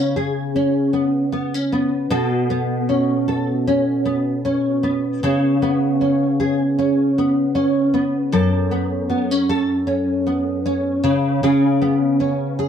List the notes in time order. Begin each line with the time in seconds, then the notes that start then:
Already playing: C#3 C#4 G#4
0.16 G#4
0.56 C#4
0.93 B3
1.32 B3
1.54 C#4
1.72 B3
2.10 B2 A4
2.50 B3
2.89 C#4
3.28 A4
3.67 C#4
4.05 B3
4.45 C#4
4.83 B3
5.23 C#3 G#4
5.62 B3
6.01 C#4
6.40 G#4
6.79 C#4
7.18 B3
7.55 C#4
7.94 B3
8.32 F#2 A4
8.71 B3
9.10 B3
9.31 C#4
9.49 A4
9.87 C#4
10.27 B3
10.66 C#4
11.04 C#3
11.43 C#3 G#4
11.82 B3
12.20 C#4
12.59 G#4